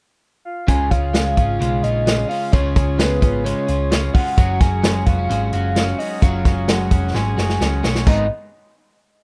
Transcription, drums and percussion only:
0.68 kick, closed hi-hat
0.91 kick, closed hi-hat
1.14 snare, closed hi-hat
1.37 kick, closed hi-hat
1.61 closed hi-hat
1.84 closed hi-hat
2.07 snare, closed hi-hat
2.31 open hi-hat
2.53 kick, closed hi-hat
2.76 kick, closed hi-hat
2.99 snare, closed hi-hat
3.22 kick, closed hi-hat
3.46 closed hi-hat
3.68 closed hi-hat
3.92 snare, closed hi-hat
4.15 kick, open hi-hat
4.38 kick, closed hi-hat
4.61 kick, snare, closed hi-hat
4.84 snare, closed hi-hat
5.06 kick, closed hi-hat
5.30 closed hi-hat
5.53 closed hi-hat
5.76 snare, closed hi-hat
6.00 open hi-hat
6.22 kick, closed hi-hat
6.45 kick, snare, closed hi-hat
6.68 snare, closed hi-hat
6.91 kick, closed hi-hat
7.15 snare
7.38 snare
7.49 snare
7.61 snare
7.84 snare
7.95 snare
8.07 kick, crash

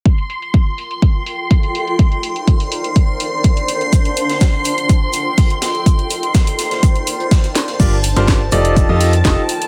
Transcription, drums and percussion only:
0.06 kick, closed hi-hat
0.18 closed hi-hat
0.30 open hi-hat
0.42 closed hi-hat
0.54 kick, closed hi-hat
0.78 open hi-hat
0.91 closed hi-hat
1.02 kick, closed hi-hat
1.26 open hi-hat
1.51 kick, closed hi-hat
1.63 closed hi-hat
1.75 open hi-hat
1.87 closed hi-hat
1.99 kick, closed hi-hat
2.12 closed hi-hat
2.23 open hi-hat
2.36 closed hi-hat
2.47 kick, closed hi-hat
2.60 open hi-hat
2.72 open hi-hat
2.84 closed hi-hat
2.96 kick, closed hi-hat
3.20 open hi-hat
3.44 kick, closed hi-hat
3.57 closed hi-hat
3.68 open hi-hat
3.81 closed hi-hat
3.93 kick, closed hi-hat, shaker
4.05 closed hi-hat
4.16 open hi-hat, shaker
4.29 snare, closed hi-hat
4.41 kick, snare, closed hi-hat, shaker
4.64 open hi-hat, shaker
4.78 closed hi-hat
4.89 kick, closed hi-hat, shaker
5.13 open hi-hat, shaker
5.38 kick, closed hi-hat, open hi-hat
5.50 closed hi-hat
5.62 snare, open hi-hat, shaker
5.75 closed hi-hat
5.86 kick, closed hi-hat, shaker
5.99 closed hi-hat
6.10 open hi-hat, shaker
6.23 closed hi-hat
6.34 kick, snare, closed hi-hat, shaker
6.47 open hi-hat
6.59 snare, open hi-hat, shaker
6.71 snare, closed hi-hat
6.83 kick, closed hi-hat, shaker
6.96 closed hi-hat
7.07 open hi-hat, shaker
7.20 closed hi-hat
7.31 kick, snare, closed hi-hat, shaker
7.44 snare, closed hi-hat
7.55 snare, open hi-hat, shaker
7.67 snare, closed hi-hat
7.80 kick, closed hi-hat, crash, shaker
8.03 open hi-hat, shaker
8.16 snare, closed hi-hat
8.28 kick, snare, closed hi-hat, shaker
8.51 open hi-hat, shaker
8.65 closed hi-hat
8.76 kick, closed hi-hat, shaker
9.00 open hi-hat
9.13 closed hi-hat
9.25 kick, snare, closed hi-hat, shaker
9.49 open hi-hat, shaker
9.62 closed hi-hat

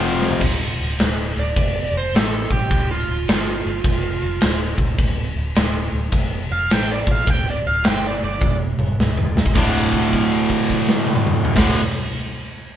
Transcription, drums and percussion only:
0.21 snare
0.31 floor tom
0.41 kick, crash
0.99 snare, crash
1.56 kick, crash
2.15 snare, crash
2.51 kick
2.71 kick, crash
3.28 snare, crash
3.84 kick, crash
4.41 snare, crash
4.78 kick
4.98 kick, crash
5.55 snare, crash
6.12 kick, crash
6.70 snare, crash
7.07 kick
7.18 snare
7.27 kick, crash
7.84 snare, crash
8.41 kick, high tom
8.79 mid tom
9.00 snare
9.17 mid tom
9.37 snare
9.46 kick
9.55 kick, crash
9.92 kick, crash
10.02 crash
10.13 kick, crash
10.31 crash
10.50 kick, crash
10.60 crash
10.70 kick, crash
10.89 snare
11.07 high tom
11.16 mid tom
11.27 mid tom
11.45 floor tom
11.56 kick, snare, crash

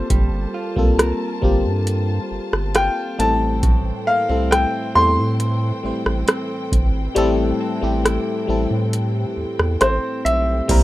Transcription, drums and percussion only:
0.10 kick, closed hi-hat
0.77 kick
0.99 cross-stick, closed hi-hat
1.43 kick
1.87 closed hi-hat
2.53 cross-stick
2.75 cross-stick, closed hi-hat
3.20 closed hi-hat
3.63 kick, closed hi-hat
4.52 cross-stick, closed hi-hat
5.40 closed hi-hat
6.06 cross-stick
6.28 cross-stick, closed hi-hat
6.72 kick, closed hi-hat
7.16 closed hi-hat
8.05 cross-stick, closed hi-hat
8.93 closed hi-hat
9.59 cross-stick
9.81 cross-stick, closed hi-hat
10.26 closed hi-hat
10.69 kick, closed hi-hat, crash

